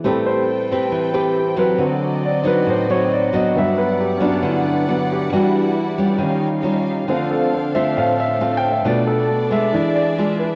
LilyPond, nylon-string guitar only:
\new Staff \with { instrumentName = "Nylon-string guitar" } { \time 4/4 \key a \minor \tempo 4 = 136 << { <c' g' b'>4 r8 <c' g' b'>4 <c' g' b'>4 <fis c'>8~ | <fis c'>4. <fis c' ees'>4 <fis c' ees'>4 <fis b d'>8~ | <fis b d'>4. <fis b d'>4. <fis b d'>4 | <g d' fis'>4. <g cis' f'>4. <g cis' eis'>4 |
<a c' f'>4 r8 <a c' f'>4. <a c' f'>8 r8 | <a d' f'>4 r8 <gis d'>4. <gis d' f'>8 r8 | } \\ { a2 e2 | d2 a,2 | g,2 d2 | e2 dis2 |
d2 a,2 | b,2 e2 | } >> }